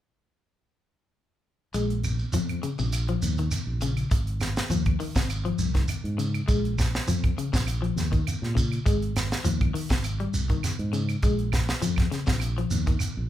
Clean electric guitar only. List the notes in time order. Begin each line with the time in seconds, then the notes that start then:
1.74 G#3
2.34 F3
2.63 C#3
2.79 C3
3.09 F3
3.39 D#3
3.82 C#3
4.11 muted clean electric guitar stroke
4.71 F3
5.00 D#3
5.16 C3
5.45 F3
5.75 D#3
6.18 C#3
6.48 G#3
7.08 F3
7.38 C#3
7.53 C3
7.82 F3
8.12 D#3
8.55 C#3
8.86 G#3
9.45 F3
9.74 D#3
9.91 C3
10.20 G3
10.50 D#3
10.93 C#3
11.23 G#3
11.82 F3
12.11 C#3
12.27 C3
12.58 F3
12.87 D#3